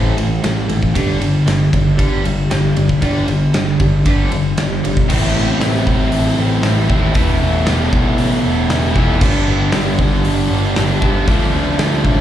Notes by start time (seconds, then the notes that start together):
Already playing: A1 A2 E3 A3 C4
0.17 A1 A2 E3 A3, ride
0.43 A1 A2 E3 A3, snare, ride
0.69 A1 A2 E3 A3, ride
0.82 kick
0.94 G1 G2 D3 G3 B3 D4, kick, ride
1.20 G1 G2 D3 G3 D4, ride
1.46 G1 G2 D3 G3 D4, snare, ride
1.73 G1 G2 D3 G3 D4, kick, ride
1.97 G1 G2 D3 G3 B3 D4, kick, ride
2.24 G1 G2 D3 G3 D4, ride
2.50 G1 G2 D3 G3 D4, snare, ride
2.77 G1 G2 D3 G3 D4, ride
2.89 kick
3.01 G1 G2 D3 G3 B3 D4, kick, ride
3.28 G1 G2 D3 G3 D4, ride
3.54 G1 G2 D3 G3 D4, snare, ride
3.80 G1 G2 D3 G3 D4, kick, ride
4.05 G1 G2 D3 G3 B3 D4, kick, ride
4.32 G1 G2 D3 G3 D4, ride
4.58 G1 G2 D3 G3 D4, snare, ride
4.84 G1 G2 D3 G3 D4, ride
4.97 kick
5.10 A1 A2 E3 A3 C4 E4, kick, crash
5.35 A1 A3 C4 E4
5.61 A1 A2 E3 A3 C4 E4, snare, open hi-hat
5.87 A1 C4 E4, kick
5.91 A3
6.12 A1, open hi-hat
6.38 A1 A3 C4 E4
6.63 A1 E3 A3 C4, snare, open hi-hat
6.68 E4
6.89 D#2 A2 E3 A3 C4 E4, kick
7.14 E1 E3 A3 B3 E4, kick, open hi-hat
7.40 E1 A3 B3 E4
7.66 E1 E3 A3 B3 E4, snare, open hi-hat
7.92 B1 A3 B3 E4, kick
8.18 B1, open hi-hat
8.43 E1 A3 B3 E4
8.70 E1 E3 A3 B3 E4, snare, open hi-hat
8.96 F1 E3 A3 B3 E4, kick
9.20 G1 G2 D3 G3 B3 D4, kick, crash
9.48 G1 G3 B3 D4
9.72 G1 G2 D3 G3 B3, snare, open hi-hat
9.76 D4
9.99 G1 G3 B3 D4, kick
10.25 G1, open hi-hat
10.49 G1 G3 B3 D4
10.76 G1 D3 G3 B3 D4, snare, open hi-hat
11.02 G2 D3 G3 B3 D4, kick
11.27 D2 D3 F3 A3 D4, kick, open hi-hat
11.53 D2 F3 A3 D4
11.78 D2 D3 F3 A3 D4, snare, open hi-hat
12.04 A1 F3 A3 D4, kick